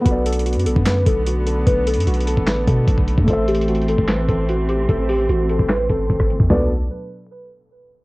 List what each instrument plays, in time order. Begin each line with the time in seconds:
0.01 felt piano B3 F#4
0.06 808-style bass B1, string section D3 A3 B3, felt piano A4, synth keys B4, kick, closed hi-hat
0.11 felt piano D5
0.26 synth keys A4, closed hi-hat
0.33 closed hi-hat
0.39 closed hi-hat
0.46 synth keys F#4, closed hi-hat
0.53 808-style bass F#2, closed hi-hat
0.59 closed hi-hat
0.66 808-style bass B1, synth keys A4, closed hi-hat
0.76 808-style bass F#2, kick
0.86 synth keys B4, snare, clap, closed hi-hat
1.06 808-style bass B1, synth keys A4, kick, closed hi-hat
1.26 synth keys F#4, closed hi-hat
1.47 synth keys A4, closed hi-hat
1.67 808-style bass B1, synth keys B4, kick, closed hi-hat
1.87 synth keys A4, closed hi-hat
1.94 808-style bass F#2, closed hi-hat
2.00 closed hi-hat
2.07 808-style bass B1, synth keys F#4, closed hi-hat
2.14 closed hi-hat
2.20 closed hi-hat
2.27 synth keys A4, closed hi-hat
2.37 808-style bass A1, kick
2.47 synth keys B4, snare, clap, closed hi-hat
2.67 808-style bass B2, synth keys A4, kick, closed hi-hat
2.88 808-style bass B1, kick, closed hi-hat
2.98 kick
3.08 closed hi-hat
3.18 808-style bass F#2, kick
3.23 felt piano A3 A4
3.28 808-style bass A1, string section E3 C4, synth keys A4, felt piano C5, kick, closed hi-hat
3.33 felt piano E5
3.48 synth keys G4, closed hi-hat
3.55 closed hi-hat
3.61 closed hi-hat
3.68 synth keys F#4, closed hi-hat
3.75 closed hi-hat
3.82 closed hi-hat
3.88 synth keys A4, closed hi-hat
3.98 808-style bass A1, kick
4.08 synth keys B4, snare, clap, closed hi-hat
4.28 808-style bass A1, synth keys A4, kick, closed hi-hat
4.49 synth keys F#4, closed hi-hat
4.69 synth keys G4, closed hi-hat
4.89 808-style bass A1, synth keys A4, kick, closed hi-hat
5.09 synth keys G4, open hi-hat
5.29 808-style bass A1, synth keys F#4, closed hi-hat
5.49 synth keys A4, closed hi-hat
5.59 808-style bass A1, kick
5.69 synth keys B4, snare, clap, closed hi-hat
5.90 808-style bass A1, synth keys A4, kick, closed hi-hat
6.10 808-style bass A1, kick, closed hi-hat
6.20 kick, cross-stick
6.30 808-style bass G1, closed hi-hat
6.40 808-style bass E2, kick
6.50 808-style bass B1, string section B2 F#3 A3 D4, felt piano B3 F#4 A4 D5, synth keys B4, snare, floor tom, open hi-hat